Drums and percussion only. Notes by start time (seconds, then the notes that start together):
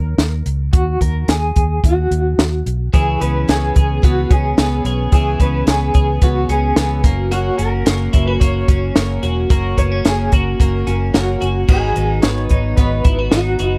0.18 snare, closed hi-hat
0.46 closed hi-hat
0.73 kick, closed hi-hat
1.01 kick, closed hi-hat
1.28 snare, closed hi-hat
1.56 kick, closed hi-hat
1.84 kick, closed hi-hat
2.11 closed hi-hat
2.39 snare, closed hi-hat
2.66 closed hi-hat
2.94 kick, closed hi-hat
3.21 closed hi-hat
3.49 snare, closed hi-hat
3.76 kick, closed hi-hat
4.03 kick, closed hi-hat
4.31 kick, closed hi-hat
4.58 snare, closed hi-hat
4.85 closed hi-hat
5.12 kick, closed hi-hat
5.40 kick, closed hi-hat
5.67 snare, closed hi-hat
5.94 kick, closed hi-hat
6.22 kick, closed hi-hat
6.49 closed hi-hat
6.76 snare, closed hi-hat
7.04 kick, closed hi-hat
7.32 closed hi-hat
7.59 closed hi-hat
7.86 snare, closed hi-hat
8.13 kick, closed hi-hat
8.41 kick, closed hi-hat
8.68 kick, closed hi-hat
8.96 snare, closed hi-hat
9.23 closed hi-hat
9.50 kick, closed hi-hat
9.78 kick, closed hi-hat
10.05 snare, closed hi-hat
10.32 kick, closed hi-hat
10.60 kick, closed hi-hat
10.87 closed hi-hat
11.14 snare, closed hi-hat
11.42 closed hi-hat
11.68 kick, crash
11.96 closed hi-hat
12.22 snare, closed hi-hat
12.49 kick, closed hi-hat
12.77 kick, closed hi-hat
13.05 kick, closed hi-hat
13.32 snare, closed hi-hat
13.59 closed hi-hat